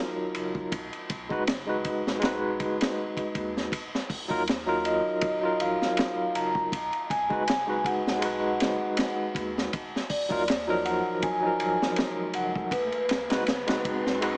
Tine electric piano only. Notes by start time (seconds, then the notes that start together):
Already playing: F#3 D#4 F4 A#4
1.29 G#3 D#4 F#4 B4
1.66 G#3 D#4 F#4 B4
2.20 G#3 D#4 F#4
2.26 B4
4.28 F#3 D#4 F4 A#4
4.66 F#3 D#4 F4 A#4
5.39 F#3 D#4 F4
5.45 A#4
7.29 G#3 D#4 F#4 B4
7.67 G#3 D#4 F#4 B4
8.19 G#3 D#4
8.23 F#4 B4
10.29 F#3 D#4 F4 A#4
10.67 F3 F#3 D#4 A#4
11.40 F#3 D#4
11.45 F3 A#4
13.29 G#3 D#4 F#4 B4
13.66 G#3 D#4 F#4 B4
14.21 G#3 D#4 F#4 B4